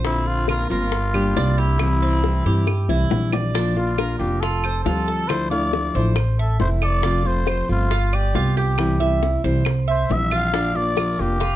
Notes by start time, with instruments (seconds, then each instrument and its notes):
Already playing: upright bass A#1
0.04 nylon-string guitar D3 A#3 C4 F4, cuban tres C4, muted trumpet E4, high bongo
0.26 muted trumpet F4, high bongo
0.48 nylon-string guitar D3 A#3 C4 F4, muted trumpet F4, cuban tres A#4, high bongo, claves
0.70 upright bass G1, nylon-string guitar A#3 C4 F4, muted trumpet F4, cuban tres A#4, high bongo
0.92 muted nylon-string guitar stroke, high bongo
1.14 nylon-string guitar G3 A#3 D4 G4, cuban tres G4, claves
1.36 upright bass C2, nylon-string guitar G3 A#3 D4 G4, cuban tres D4, high bongo, low bongo
1.58 muted trumpet E4, cuban tres G4, high bongo
1.79 nylon-string guitar C3 E3 G3 C4 E4, high bongo, claves
2.02 cuban tres C4, high bongo
2.24 nylon-string guitar E3 G3 C4 E4, high bongo
2.45 upright bass G2, nylon-string guitar E3 G3 C4 E4, cuban tres G4, high bongo
2.67 muted nylon-string guitar stroke, high bongo, claves
2.88 upright bass C2, nylon-string guitar E3 G3 C4 E4, cuban tres E4, low bongo
3.10 upright bass A#1, nylon-string guitar E3 G3 C4 E4, low bongo
3.33 cuban tres D5, low bongo, claves
3.54 nylon-string guitar F3 A#3 D4 F4, cuban tres D4, high bongo
3.76 nylon-string guitar A#3 D4 F4, muted trumpet F4, high bongo
3.98 nylon-string guitar F3 A#3 D4 F4, cuban tres A#4, high bongo, claves
4.19 upright bass F1, nylon-string guitar A#3 D4 F4, muted trumpet G4, high bongo
4.41 cuban tres F4, muted trumpet A4, muted nylon-string guitar stroke, high bongo
4.64 cuban tres C5, claves
4.84 upright bass D2, nylon-string guitar F3 G3 C4 G4, cuban tres F4, muted trumpet A4, high bongo, low bongo
5.08 cuban tres A4, high bongo
5.28 nylon-string guitar D3 F3 A3 D4 E4, muted trumpet C5, high bongo, claves
5.51 nylon-string guitar F3 A3 D4 E4, muted trumpet D5, cuban tres F5, high bongo
5.73 nylon-string guitar F3 A3 D4 E4, high bongo
5.95 upright bass A1, nylon-string guitar F3 A3 D4 E4, cuban tres C5, high bongo
6.16 muted nylon-string guitar stroke, high bongo, claves
6.39 muted trumpet A4, cuban tres E5
6.60 upright bass F1, nylon-string guitar E3 A3 C4 E4, muted trumpet C5, high bongo, low bongo
6.82 cuban tres A4, muted trumpet D5, high bongo, claves
7.03 nylon-string guitar C3 F3 A3 C4 F4, cuban tres F4, high bongo
7.25 nylon-string guitar F3 A3 C4 F4, muted trumpet C5, high bongo
7.47 nylon-string guitar F3 A3 C4 F4, cuban tres C5, high bongo, claves
7.69 upright bass G1, nylon-string guitar F3 A3 C4 F4, muted trumpet F4, high bongo
7.91 cuban tres F4, muted nylon-string guitar stroke, high bongo
8.13 muted trumpet G4, cuban tres D5, claves
8.34 upright bass C2, nylon-string guitar G3 B3 F4, cuban tres F4, high bongo, low bongo
8.57 cuban tres G4, muted trumpet G4, high bongo
8.78 nylon-string guitar C3 E3 G3 C4 E4, high bongo, claves
9.00 nylon-string guitar E3 G3 C4 E4, cuban tres E5, high bongo
9.23 nylon-string guitar C4 E4, high bongo
9.44 upright bass C2, nylon-string guitar E3 G3 C4 E4, cuban tres C5, high bongo
9.65 muted nylon-string guitar stroke, high bongo, claves
9.88 muted trumpet C5, cuban tres E5
10.09 upright bass A#1, nylon-string guitar E3 G3 C4 E4, muted trumpet E5, high bongo, low bongo
10.31 cuban tres F4, muted trumpet F5, high bongo, claves
10.53 nylon-string guitar F3 A#3 D4 F4, cuban tres D4, high bongo
10.75 nylon-string guitar A#3 D4 F4, muted trumpet D5, high bongo
10.97 nylon-string guitar F3 A#3 D4 F4, cuban tres A#4, high bongo, claves
11.19 upright bass F1, nylon-string guitar A#3 D4 F4, muted trumpet G4, high bongo
11.40 cuban tres F4, muted nylon-string guitar stroke, high bongo